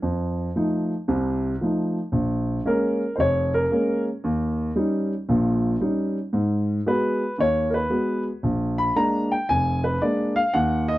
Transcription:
0, 0, Header, 1, 2, 480
1, 0, Start_track
1, 0, Tempo, 525394
1, 24, Time_signature, 4, 2, 24, 8
1, 10034, End_track
2, 0, Start_track
2, 0, Title_t, "Grand piano"
2, 0, Program_c, 0, 0
2, 22, Note_on_c, 0, 41, 65
2, 439, Note_off_c, 0, 41, 0
2, 507, Note_on_c, 0, 57, 47
2, 510, Note_on_c, 0, 53, 52
2, 517, Note_on_c, 0, 63, 58
2, 840, Note_off_c, 0, 57, 0
2, 842, Note_off_c, 0, 53, 0
2, 845, Note_off_c, 0, 63, 0
2, 987, Note_on_c, 0, 36, 64
2, 987, Note_on_c, 0, 48, 64
2, 1401, Note_off_c, 0, 36, 0
2, 1401, Note_off_c, 0, 48, 0
2, 1472, Note_on_c, 0, 53, 53
2, 1480, Note_on_c, 0, 57, 44
2, 1490, Note_on_c, 0, 63, 54
2, 1802, Note_off_c, 0, 53, 0
2, 1806, Note_off_c, 0, 57, 0
2, 1811, Note_off_c, 0, 63, 0
2, 1938, Note_on_c, 0, 34, 69
2, 2356, Note_off_c, 0, 34, 0
2, 2424, Note_on_c, 0, 56, 50
2, 2424, Note_on_c, 0, 58, 48
2, 2428, Note_on_c, 0, 61, 60
2, 2441, Note_on_c, 0, 70, 77
2, 2758, Note_off_c, 0, 56, 0
2, 2758, Note_off_c, 0, 58, 0
2, 2760, Note_off_c, 0, 61, 0
2, 2878, Note_off_c, 0, 70, 0
2, 2883, Note_on_c, 0, 72, 64
2, 2904, Note_on_c, 0, 29, 72
2, 2917, Note_off_c, 0, 72, 0
2, 2923, Note_on_c, 0, 73, 96
2, 3222, Note_off_c, 0, 73, 0
2, 3237, Note_on_c, 0, 70, 82
2, 3318, Note_off_c, 0, 29, 0
2, 3385, Note_on_c, 0, 56, 49
2, 3389, Note_on_c, 0, 58, 49
2, 3396, Note_on_c, 0, 61, 58
2, 3675, Note_off_c, 0, 70, 0
2, 3718, Note_off_c, 0, 56, 0
2, 3720, Note_off_c, 0, 58, 0
2, 3723, Note_off_c, 0, 61, 0
2, 3873, Note_on_c, 0, 39, 69
2, 4283, Note_off_c, 0, 39, 0
2, 4346, Note_on_c, 0, 55, 53
2, 4348, Note_on_c, 0, 61, 52
2, 4351, Note_on_c, 0, 63, 59
2, 4678, Note_off_c, 0, 55, 0
2, 4679, Note_off_c, 0, 61, 0
2, 4681, Note_off_c, 0, 63, 0
2, 4830, Note_on_c, 0, 46, 67
2, 4831, Note_on_c, 0, 34, 64
2, 5242, Note_off_c, 0, 34, 0
2, 5242, Note_off_c, 0, 46, 0
2, 5305, Note_on_c, 0, 55, 49
2, 5309, Note_on_c, 0, 61, 43
2, 5310, Note_on_c, 0, 63, 54
2, 5638, Note_off_c, 0, 55, 0
2, 5639, Note_off_c, 0, 61, 0
2, 5640, Note_off_c, 0, 63, 0
2, 5782, Note_on_c, 0, 44, 69
2, 6197, Note_off_c, 0, 44, 0
2, 6270, Note_on_c, 0, 56, 52
2, 6271, Note_on_c, 0, 59, 52
2, 6273, Note_on_c, 0, 66, 59
2, 6282, Note_on_c, 0, 71, 78
2, 6600, Note_off_c, 0, 56, 0
2, 6601, Note_off_c, 0, 59, 0
2, 6602, Note_off_c, 0, 66, 0
2, 6718, Note_off_c, 0, 71, 0
2, 6743, Note_on_c, 0, 39, 62
2, 6765, Note_on_c, 0, 73, 95
2, 7037, Note_on_c, 0, 70, 56
2, 7057, Note_off_c, 0, 70, 0
2, 7062, Note_off_c, 0, 73, 0
2, 7072, Note_on_c, 0, 71, 81
2, 7158, Note_off_c, 0, 39, 0
2, 7216, Note_on_c, 0, 56, 45
2, 7221, Note_on_c, 0, 59, 50
2, 7221, Note_on_c, 0, 66, 51
2, 7512, Note_off_c, 0, 71, 0
2, 7553, Note_off_c, 0, 56, 0
2, 7556, Note_off_c, 0, 59, 0
2, 7556, Note_off_c, 0, 66, 0
2, 7704, Note_on_c, 0, 34, 68
2, 8024, Note_on_c, 0, 83, 92
2, 8118, Note_off_c, 0, 34, 0
2, 8178, Note_off_c, 0, 83, 0
2, 8181, Note_on_c, 0, 56, 52
2, 8182, Note_on_c, 0, 58, 51
2, 8190, Note_on_c, 0, 62, 58
2, 8191, Note_on_c, 0, 82, 91
2, 8495, Note_off_c, 0, 82, 0
2, 8511, Note_on_c, 0, 79, 80
2, 8516, Note_off_c, 0, 56, 0
2, 8516, Note_off_c, 0, 58, 0
2, 8520, Note_off_c, 0, 62, 0
2, 8661, Note_off_c, 0, 79, 0
2, 8671, Note_on_c, 0, 80, 100
2, 8677, Note_on_c, 0, 29, 70
2, 8976, Note_off_c, 0, 80, 0
2, 8989, Note_on_c, 0, 71, 73
2, 9086, Note_off_c, 0, 29, 0
2, 9141, Note_off_c, 0, 71, 0
2, 9151, Note_on_c, 0, 56, 51
2, 9152, Note_on_c, 0, 74, 80
2, 9154, Note_on_c, 0, 58, 45
2, 9158, Note_on_c, 0, 62, 53
2, 9456, Note_off_c, 0, 74, 0
2, 9463, Note_on_c, 0, 77, 94
2, 9481, Note_off_c, 0, 56, 0
2, 9483, Note_off_c, 0, 58, 0
2, 9485, Note_off_c, 0, 62, 0
2, 9618, Note_off_c, 0, 77, 0
2, 9625, Note_on_c, 0, 78, 91
2, 9628, Note_on_c, 0, 39, 75
2, 9933, Note_off_c, 0, 78, 0
2, 9943, Note_on_c, 0, 75, 99
2, 10034, Note_off_c, 0, 39, 0
2, 10034, Note_off_c, 0, 75, 0
2, 10034, End_track
0, 0, End_of_file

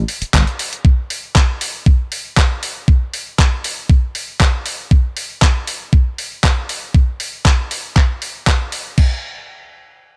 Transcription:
0, 0, Header, 1, 4, 480
1, 0, Start_track
1, 0, Tempo, 508475
1, 796, Time_signature, 4, 2, 24, 8
1, 9600, End_track
2, 0, Start_track
2, 0, Title_t, "Slap bass"
2, 0, Program_c, 0, 36
2, 318, Note_on_c, 0, 31, 81
2, 406, Note_off_c, 0, 31, 0
2, 9600, End_track
3, 0, Start_track
3, 0, Title_t, "Muted slap bass strokes"
3, 204, Note_on_c, 9, 29, 42
3, 299, Note_off_c, 9, 29, 0
3, 9600, End_track
4, 0, Start_track
4, 0, Title_t, "Drums"
4, 79, Note_on_c, 9, 46, 99
4, 174, Note_off_c, 9, 46, 0
4, 205, Note_on_c, 9, 42, 48
4, 299, Note_off_c, 9, 42, 0
4, 319, Note_on_c, 9, 36, 109
4, 320, Note_on_c, 9, 42, 46
4, 323, Note_on_c, 9, 39, 112
4, 413, Note_off_c, 9, 36, 0
4, 415, Note_off_c, 9, 42, 0
4, 417, Note_off_c, 9, 39, 0
4, 446, Note_on_c, 9, 42, 23
4, 541, Note_off_c, 9, 42, 0
4, 560, Note_on_c, 9, 46, 99
4, 654, Note_off_c, 9, 46, 0
4, 686, Note_on_c, 9, 42, 47
4, 780, Note_off_c, 9, 42, 0
4, 799, Note_on_c, 9, 36, 111
4, 894, Note_off_c, 9, 36, 0
4, 1041, Note_on_c, 9, 46, 101
4, 1136, Note_off_c, 9, 46, 0
4, 1279, Note_on_c, 9, 36, 112
4, 1282, Note_on_c, 9, 39, 105
4, 1374, Note_off_c, 9, 36, 0
4, 1376, Note_off_c, 9, 39, 0
4, 1520, Note_on_c, 9, 46, 101
4, 1615, Note_off_c, 9, 46, 0
4, 1759, Note_on_c, 9, 36, 114
4, 1854, Note_off_c, 9, 36, 0
4, 1999, Note_on_c, 9, 46, 96
4, 2093, Note_off_c, 9, 46, 0
4, 2239, Note_on_c, 9, 36, 107
4, 2242, Note_on_c, 9, 39, 108
4, 2333, Note_off_c, 9, 36, 0
4, 2336, Note_off_c, 9, 39, 0
4, 2480, Note_on_c, 9, 46, 94
4, 2575, Note_off_c, 9, 46, 0
4, 2719, Note_on_c, 9, 36, 102
4, 2813, Note_off_c, 9, 36, 0
4, 2960, Note_on_c, 9, 46, 96
4, 3054, Note_off_c, 9, 46, 0
4, 3198, Note_on_c, 9, 36, 106
4, 3204, Note_on_c, 9, 39, 104
4, 3293, Note_off_c, 9, 36, 0
4, 3298, Note_off_c, 9, 39, 0
4, 3440, Note_on_c, 9, 46, 94
4, 3534, Note_off_c, 9, 46, 0
4, 3677, Note_on_c, 9, 36, 104
4, 3772, Note_off_c, 9, 36, 0
4, 3917, Note_on_c, 9, 46, 89
4, 4012, Note_off_c, 9, 46, 0
4, 4157, Note_on_c, 9, 36, 101
4, 4160, Note_on_c, 9, 39, 104
4, 4251, Note_off_c, 9, 36, 0
4, 4254, Note_off_c, 9, 39, 0
4, 4395, Note_on_c, 9, 46, 90
4, 4490, Note_off_c, 9, 46, 0
4, 4637, Note_on_c, 9, 36, 102
4, 4731, Note_off_c, 9, 36, 0
4, 4876, Note_on_c, 9, 46, 94
4, 4971, Note_off_c, 9, 46, 0
4, 5116, Note_on_c, 9, 36, 104
4, 5118, Note_on_c, 9, 39, 106
4, 5211, Note_off_c, 9, 36, 0
4, 5212, Note_off_c, 9, 39, 0
4, 5357, Note_on_c, 9, 46, 92
4, 5451, Note_off_c, 9, 46, 0
4, 5596, Note_on_c, 9, 36, 103
4, 5690, Note_off_c, 9, 36, 0
4, 5838, Note_on_c, 9, 46, 86
4, 5932, Note_off_c, 9, 46, 0
4, 6076, Note_on_c, 9, 36, 101
4, 6079, Note_on_c, 9, 39, 109
4, 6170, Note_off_c, 9, 36, 0
4, 6174, Note_off_c, 9, 39, 0
4, 6318, Note_on_c, 9, 46, 85
4, 6412, Note_off_c, 9, 46, 0
4, 6556, Note_on_c, 9, 36, 103
4, 6651, Note_off_c, 9, 36, 0
4, 6796, Note_on_c, 9, 46, 96
4, 6890, Note_off_c, 9, 46, 0
4, 7036, Note_on_c, 9, 36, 106
4, 7040, Note_on_c, 9, 39, 110
4, 7130, Note_off_c, 9, 36, 0
4, 7135, Note_off_c, 9, 39, 0
4, 7278, Note_on_c, 9, 46, 91
4, 7373, Note_off_c, 9, 46, 0
4, 7516, Note_on_c, 9, 36, 104
4, 7522, Note_on_c, 9, 39, 57
4, 7611, Note_off_c, 9, 36, 0
4, 7616, Note_off_c, 9, 39, 0
4, 7758, Note_on_c, 9, 46, 89
4, 7852, Note_off_c, 9, 46, 0
4, 7995, Note_on_c, 9, 36, 102
4, 7999, Note_on_c, 9, 39, 108
4, 8090, Note_off_c, 9, 36, 0
4, 8093, Note_off_c, 9, 39, 0
4, 8234, Note_on_c, 9, 46, 87
4, 8328, Note_off_c, 9, 46, 0
4, 8474, Note_on_c, 9, 49, 77
4, 8476, Note_on_c, 9, 36, 101
4, 8569, Note_off_c, 9, 49, 0
4, 8570, Note_off_c, 9, 36, 0
4, 9600, End_track
0, 0, End_of_file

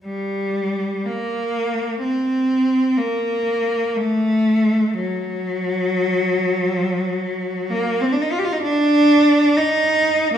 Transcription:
0, 0, Header, 1, 2, 480
1, 0, Start_track
1, 0, Tempo, 1020408
1, 22, Time_signature, 4, 2, 24, 8
1, 500, Tempo, 952381
1, 1460, Tempo, 978793
1, 2420, Tempo, 941915
1, 3380, Tempo, 917431
1, 4820, Tempo, 1041667
1, 5196, End_track
2, 0, Start_track
2, 0, Title_t, "Cello"
2, 0, Program_c, 0, 42
2, 25, Note_on_c, 0, 55, 61
2, 482, Note_off_c, 0, 55, 0
2, 496, Note_on_c, 0, 58, 64
2, 976, Note_on_c, 0, 60, 64
2, 979, Note_off_c, 0, 58, 0
2, 1448, Note_off_c, 0, 60, 0
2, 1465, Note_on_c, 0, 58, 62
2, 1944, Note_off_c, 0, 58, 0
2, 1950, Note_on_c, 0, 57, 67
2, 2424, Note_on_c, 0, 54, 67
2, 2425, Note_off_c, 0, 57, 0
2, 3848, Note_on_c, 0, 58, 70
2, 3859, Note_off_c, 0, 54, 0
2, 3994, Note_off_c, 0, 58, 0
2, 4008, Note_on_c, 0, 60, 62
2, 4066, Note_on_c, 0, 62, 52
2, 4071, Note_off_c, 0, 60, 0
2, 4116, Note_off_c, 0, 62, 0
2, 4118, Note_on_c, 0, 63, 55
2, 4156, Note_off_c, 0, 63, 0
2, 4169, Note_on_c, 0, 65, 58
2, 4198, Note_off_c, 0, 65, 0
2, 4206, Note_on_c, 0, 67, 60
2, 4237, Note_on_c, 0, 65, 63
2, 4238, Note_off_c, 0, 67, 0
2, 4278, Note_on_c, 0, 63, 58
2, 4280, Note_off_c, 0, 65, 0
2, 4328, Note_on_c, 0, 62, 85
2, 4329, Note_off_c, 0, 63, 0
2, 4811, Note_off_c, 0, 62, 0
2, 4823, Note_on_c, 0, 63, 76
2, 5177, Note_on_c, 0, 58, 65
2, 5181, Note_off_c, 0, 63, 0
2, 5196, Note_off_c, 0, 58, 0
2, 5196, End_track
0, 0, End_of_file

